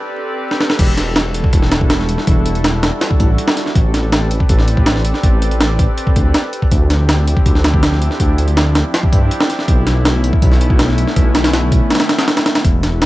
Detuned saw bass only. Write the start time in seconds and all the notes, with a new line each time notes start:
0.79 E1
1.53 E1
2.27 E1
3.20 A1
3.75 A1
4.49 A1
5.24 A1
6.16 D2
6.71 D2
7.46 D2
8.20 D2
9.12 G2
9.68 B1
10.42 B1
11.16 B1
12.64 E1